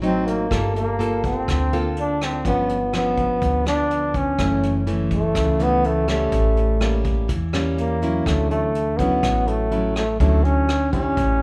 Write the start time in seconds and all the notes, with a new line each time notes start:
Already playing: A1 A2
0.02 F#3 C4 D#4, closed hi-hat
0.27 A#3, closed hi-hat
0.50 G1 G3 A#3 F4 A4, kick, cross-stick, closed hi-hat
0.76 A#3, closed hi-hat
0.99 A#3 F4 A4, closed hi-hat
1.24 C4, kick, closed hi-hat
1.48 D2 D3, kick, cross-stick, closed hi-hat
1.73 A#3 F4 A4, closed hi-hat
1.96 D4, closed hi-hat
2.21 C4, cross-stick, closed hi-hat
2.45 G1 G2 F3 B3 C#4, kick, closed hi-hat
2.69 closed hi-hat
2.93 F3 B3 C#4, cross-stick, closed hi-hat
3.17 kick, closed hi-hat
3.42 D2 D3, kick, closed hi-hat
3.66 F3 B3 D4, cross-stick, closed hi-hat
3.91 closed hi-hat
4.14 C#4, kick, closed hi-hat
4.39 F#1 F#2 E3 A3 C#4, kick, cross-stick, closed hi-hat
4.63 closed hi-hat
4.87 E3 A3 C#4, closed hi-hat
5.11 A3, kick, closed hi-hat
5.35 C#2 C#3, kick, cross-stick, closed hi-hat
5.60 E3 A3 B3 C#4, closed hi-hat
5.84 A3, closed hi-hat
6.08 G3 A3 C#4, cross-stick, closed hi-hat
6.32 A1 A2, kick, closed hi-hat
6.57 closed hi-hat
6.81 G3 A#3 C#4, cross-stick, closed hi-hat
7.05 kick, closed hi-hat
7.28 E2 E3, kick, closed hi-hat
7.53 G3 A#3 C#4, cross-stick, closed hi-hat
7.78 A#3, closed hi-hat
8.02 F#3 C#4 E4, closed hi-hat
8.26 D2 D3 A3, kick, cross-stick, closed hi-hat
8.51 A3, closed hi-hat
8.75 closed hi-hat
8.97 F#3 B3 C#4 E4, kick, closed hi-hat
9.23 A1 A2, kick, cross-stick, closed hi-hat
9.48 A3, closed hi-hat
9.72 F#3 C#4 E4, closed hi-hat
9.96 A3, cross-stick, closed hi-hat
10.20 D2 D3 F#3 A3 C#4 E4, kick, closed hi-hat
10.44 C#4, closed hi-hat
10.69 cross-stick, closed hi-hat
10.93 G3 C#4 E4, kick, closed hi-hat
11.17 A1 A2, kick, closed hi-hat